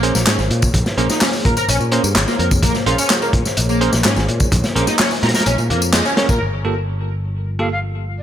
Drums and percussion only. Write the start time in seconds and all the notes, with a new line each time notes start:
0.03 closed hi-hat
0.15 snare, tambourine
0.27 snare, clap, closed hi-hat, tambourine
0.39 snare, tambourine
0.51 closed hi-hat
0.62 kick, tambourine
0.74 kick, closed hi-hat, tambourine
0.86 snare, tambourine
0.98 closed hi-hat
1.10 snare, tambourine
1.21 snare, clap, open hi-hat, tambourine
1.33 tambourine
1.45 kick, closed hi-hat
1.57 closed hi-hat, tambourine
1.69 closed hi-hat, tambourine
1.80 tambourine
1.92 closed hi-hat
2.04 tambourine
2.15 snare, clap, closed hi-hat, tambourine
2.28 snare, tambourine
2.39 closed hi-hat
2.51 kick, tambourine
2.63 kick, closed hi-hat, tambourine
2.75 snare, tambourine
2.86 closed hi-hat
2.98 closed hi-hat, tambourine
3.10 snare, clap, closed hi-hat, tambourine
3.22 tambourine
3.33 kick, closed hi-hat
3.45 snare, tambourine
3.57 closed hi-hat, tambourine
3.69 tambourine
3.81 closed hi-hat
3.93 snare, tambourine
4.04 snare, clap, closed hi-hat, tambourine
4.16 snare, tambourine
4.28 closed hi-hat
4.40 kick, tambourine
4.52 kick, closed hi-hat, tambourine
4.64 snare, tambourine
4.76 closed hi-hat
4.87 snare, tambourine
4.98 snare, clap, open hi-hat, tambourine
5.11 tambourine
5.23 snare, closed hi-hat
5.29 snare, closed hi-hat
5.34 snare, closed hi-hat, tambourine
5.40 snare, closed hi-hat
5.46 closed hi-hat, tambourine
5.58 tambourine
5.70 closed hi-hat
5.82 tambourine
5.93 snare, clap, closed hi-hat, tambourine
6.05 snare, tambourine
6.17 snare, closed hi-hat
6.29 kick, tambourine